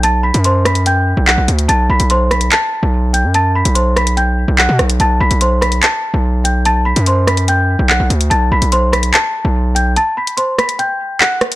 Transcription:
<<
  \new Staff \with { instrumentName = "Celesta" } { \time 4/4 \key c \lydian \tempo 4 = 145 <a'' a'''>8 <b'' b'''>8 <c'' c'''>8 <b'' b'''>8 <g'' g'''>4 <fis'' fis'''>8 r8 | <a'' a'''>8 <b'' b'''>8 <c'' c'''>8 <b'' b'''>8 <a'' a'''>4. <g'' g'''>8 | <a'' a'''>8 <b'' b'''>8 <c'' c'''>8 <b'' b'''>8 <g'' g'''>4 <fis'' fis'''>8 r8 | <a'' a'''>8 <b'' b'''>8 <c'' c'''>8 <b'' b'''>8 <a'' a'''>4. <g'' g'''>8 |
<a'' a'''>8 <b'' b'''>8 <c'' c'''>8 <b'' b'''>8 <g'' g'''>4 <fis'' fis'''>8 r8 | <a'' a'''>8 <b'' b'''>8 <c'' c'''>8 <b'' b'''>8 <a'' a'''>4. <g'' g'''>8 | <a'' a'''>8 <b'' b'''>8 <c'' c'''>8 <b'' b'''>8 <g'' g'''>4 <fis'' fis'''>8 r8 | }
  \new Staff \with { instrumentName = "808-style bass" } { \clef bass \time 4/4 \key c \lydian b,,8. fis,2 b,,8 b,,16 d,8 | b,,8 b,,16 b,,4~ b,,16 r8. b,,4 fis,16~ | fis,8. b,,2 b,,8 b,16 b,,8 | b,,8 b,,16 b,,4~ b,,16 r8. b,,4~ b,,16~ |
b,,8. fis,2 b,,8 b,,16 d,8 | b,,8 b,,16 b,,4~ b,,16 r8. b,,4~ b,,16 | r1 | }
  \new DrumStaff \with { instrumentName = "Drums" } \drummode { \time 4/4 hh8. hh16 hh8 <hh ss>16 hh16 hh4 hc8 hh16 hh16 | hh8. hh16 hh8 <hh ss>16 hh16 <hc hh>4 r8 hh8 | hh8. hh16 hh8 <hh ss>16 hh16 hh4 hc8 <hh ss>16 hh16 | hh8. hh16 hh8 <hh ss>16 hh16 <hc hh>4 r8 hh8 |
hh8. hh16 hh8 <hh ss>16 hh16 hh4 hc8 hh16 hh16 | hh8. hh16 hh8 <hh ss>16 hh16 <hc hh>4 r8 hh8 | hh8. hh16 hh8 <hh ss>16 hh16 hh4 hc8 <hh ss>16 hh16 | }
>>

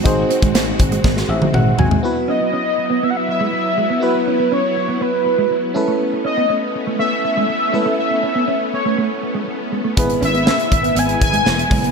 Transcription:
<<
  \new Staff \with { instrumentName = "Soft synth lead" } { \time 4/4 \key b \mixolydian \tempo 4 = 121 r1 | r8 dis''4. e''32 fis''32 e''16 e''4. | b'4 cis''4 b'4. r8 | r8 dis''4 r8 e''8 e''4. |
e''4. cis''4 r4. | r8 e''4. gis''8 gis''4. | }
  \new Staff \with { instrumentName = "FM electric piano" } { \time 4/4 \key b \mixolydian << { r2 r8 e''8 fis''8 gis''8 | r1 | r1 | r1 |
r1 | r1 | } \\ { <dis' fis' gis' bis'>1 | <b e' fis' b'>1 | <b e' fis' b'>2.~ <b e' fis' b'>8 <cis' e' a' b'>8~ | <cis' e' a' b'>2.~ <cis' e' a' b'>8 <cis' e' a' b'>8~ |
<cis' e' a' b'>2.~ <cis' e' a' b'>8 r8 | <b e' gis' b'>1 | } >> }
  \new Staff \with { instrumentName = "Clean electric guitar" } { \time 4/4 \key b \mixolydian r8 bis16 gis16 bis16 r8 gis16 gis16 r8 fis16 r8 fis16 gis16 | r8 cis'16 b16 cis'16 r8 b16 b16 r8 gis16 r8 gis16 b16 | r8 cis'16 b16 cis'16 r8 b16 b16 r8 gis16 r8 gis16 a16 | r8 cis'16 b16 cis'16 r8 a16 a16 r8 gis16 r8 gis16 a16 |
r8 cis'16 b16 cis'16 r8 a16 a16 r8 gis16 r8 gis16 a16 | r8 cis'16 b16 cis'16 r8 b16 b16 r8 gis16 r8 gis16 b16 | }
  \new Staff \with { instrumentName = "String machine" } { \time 4/4 \key b \mixolydian << { <gis fis'>1 | <fis e'>1~ | <fis e'>2.~ <fis e'>8 <a cis'>8~ | <a cis'>1~ |
<a cis'>1 | <gis e'>1 | } \\ { c'1 | b1~ | b2.~ b8 b8~ | b1~ |
b1~ | b1 | } >> }
  \new Staff \with { instrumentName = "Slap bass" } { \clef bass \time 4/4 \key b \mixolydian gis,,8 r16 gis,,16 gis,,8 gis,,8 gis,,8 a,,8 gis,,8 gis,,8 | r1 | r1 | r1 |
r1 | gis,,8 gis,,8. r16 gis,,8 gis,,8 gis,,8 e,,8 fis,,8 | }
  \new DrumStaff \with { instrumentName = "Drums" } \drummode { \time 4/4 <hh bd>8 hh16 <hh bd>16 <hh sn>8 <hh bd>16 hh16 <bd sn>16 sn8 tommh16 toml8 tomfh16 tomfh16 | r4 r4 r4 r4 | r4 r4 r4 r4 | r4 r4 r4 r4 |
r4 r4 r4 r4 | <hh bd>16 hh16 hh16 hh16 sn16 hh16 <hh bd>16 hh16 hh16 hh16 <hh bd>16 hh16 sn16 hh16 <hho bd>16 hh16 | }
>>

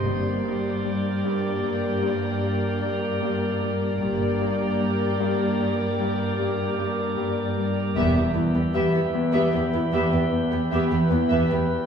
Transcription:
<<
  \new Staff \with { instrumentName = "Violin section" } { \time 5/4 \key g \phrygian \tempo 4 = 76 d''1~ d''4 | d''1~ d''4 | e''16 g'16 b'16 g'16 e''16 g'16 r16 e''16 g'16 b'16 e''16 g'16 r16 g'16 e''16 g'16 b'16 e''16 g'16 r16 | }
  \new Staff \with { instrumentName = "Synth texture" } { \time 5/4 \key g \phrygian <g' bes' d''>1~ <g' bes' d''>4 | <g' bes' d''>1~ <g' bes' d''>4 | <g' b' e''>1~ <g' b' e''>4 | }
  \new Staff \with { instrumentName = "Viola section" } { \time 5/4 \key g \phrygian <bes g'>1~ <bes g'>4 | <bes g'>1~ <bes g'>4 | <b g'>16 b16 <b e'>16 b16 <b g'>16 b16 r16 <b g'>16 b16 <b e'>16 <b g'>16 b16 r16 b16 <b g'>16 b16 <b e'>16 <b g'>16 b16 r16 | }
  \new Staff \with { instrumentName = "Harp" } { \clef bass \time 5/4 \key g \phrygian g,8 g,8 g8 g,8 g,8 g,8 g,8 g,8 g,8 g8 | g,8 g,8 g8 g,8 g,8 g,8 g,8 g,8 g,8 g8 | e,8 e,8 e8 e,8 e,8 e,8 e,8 e,8 e,8 e8 | }
  \new Staff \with { instrumentName = "Cello section" } { \clef bass \time 5/4 \key g \phrygian g,1~ g,4 | g,1~ g,4 | e,16 e,16 e,16 e,16 e,16 e,16 r16 e,16 e,16 e,16 e,16 e,16 r16 e,16 e,16 e,16 e,16 e,16 e,16 r16 | }
  \new Staff \with { instrumentName = "Double bass section" } { \clef bass \time 5/4 \key g \phrygian g,,4 r1 | g,,4 r1 | e,,16 r1 r8. | }
>>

